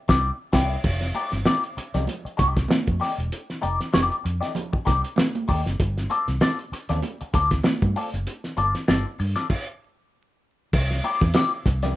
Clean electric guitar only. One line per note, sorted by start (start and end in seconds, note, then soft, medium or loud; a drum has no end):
0.08 0.29 A#3 medium
0.08 0.29 E4 medium
0.08 0.29 G4 medium
0.08 0.30 D5 loud
0.53 0.75 A#3 loud
0.53 0.75 E4 loud
0.53 0.75 G4 medium
0.53 0.76 D5 loud
1.15 1.31 A3 medium
1.15 1.31 D#4 medium
1.15 1.31 G4 loud
1.15 1.32 D5 medium
1.45 1.62 A3 medium
1.45 1.62 D#4 loud
1.45 1.62 G4 medium
1.45 1.62 D5 medium
1.77 muted clean electric guitar stroke soft
1.94 2.05 A3 medium
1.94 2.05 D#4 medium
1.94 2.04 G4 medium
1.94 2.04 D5 medium
2.25 muted clean electric guitar stroke soft
2.37 2.60 A3 medium
2.37 2.55 D#4 medium
2.37 2.55 G4 medium
2.37 2.54 D5 medium
2.56 muted clean electric guitar stroke soft
2.69 muted clean electric guitar stroke soft
3.00 3.13 A3 medium
3.00 3.13 D#4 medium
3.00 3.13 G4 medium
3.00 3.14 D5 medium
3.18 muted clean electric guitar stroke soft
3.62 3.78 A3 medium
3.62 3.78 D#4 loud
3.62 3.79 G4 medium
3.62 3.79 D5 loud
3.92 4.14 A3 medium
3.92 4.15 D#4 medium
3.92 4.15 G4 medium
3.92 4.15 D5 medium
4.24 muted clean electric guitar stroke soft
4.41 4.52 A3 medium
4.41 4.52 D#4 medium
4.41 4.51 G4 medium
4.41 4.51 D5 medium
4.73 muted clean electric guitar stroke medium
4.85 5.02 A3 medium
4.85 5.02 D#4 medium
4.85 5.02 G4 medium
4.85 5.02 D5 medium
5.03 muted clean electric guitar stroke soft
5.17 muted clean electric guitar stroke soft
5.48 5.61 A3 medium
5.48 5.61 D#4 medium
5.48 5.61 G4 medium
5.48 5.61 D5 medium
5.65 muted clean electric guitar stroke soft
6.10 6.26 C4 medium
6.10 6.26 F4 medium
6.10 6.26 A4 medium
6.10 6.27 D5 medium
6.41 6.57 C4 medium
6.41 6.57 F4 medium
6.41 6.57 A4 medium
6.41 6.57 D5 medium
6.72 muted clean electric guitar stroke soft
6.89 7.00 C4 medium
6.89 7.00 F4 medium
6.89 6.99 A4 medium
6.89 6.99 D5 medium
7.21 muted clean electric guitar stroke soft
7.33 7.50 C4 medium
7.33 7.50 F4 medium
7.33 7.50 A4 medium
7.33 7.50 D5 medium
7.66 muted clean electric guitar stroke soft
7.96 8.08 C4 medium
7.96 8.08 F4 medium
7.96 8.09 A4 medium
7.96 8.09 D5 medium
8.13 muted clean electric guitar stroke soft
8.57 8.73 C4 medium
8.57 8.73 F4 medium
8.57 8.74 A4 medium
8.57 8.74 D5 medium
8.88 9.04 C4 medium
8.88 9.04 F4 medium
8.88 9.04 A4 medium
8.88 9.05 D5 medium
9.19 muted clean electric guitar stroke medium
9.36 9.46 C4 medium
9.36 9.46 F4 medium
9.36 9.46 A4 medium
9.36 9.46 D5 medium
11.04 11.20 A#3 medium
11.04 11.20 E4 medium
11.04 11.20 G4 medium
11.04 11.21 D5 medium
11.34 11.50 A#3 medium
11.34 11.51 E4 medium
11.34 11.51 G4 medium
11.34 11.51 D5 loud
11.66 muted clean electric guitar stroke soft
11.83 11.93 A#3 medium
11.83 11.93 E4 medium
11.83 11.93 G4 medium
11.83 11.93 D5 medium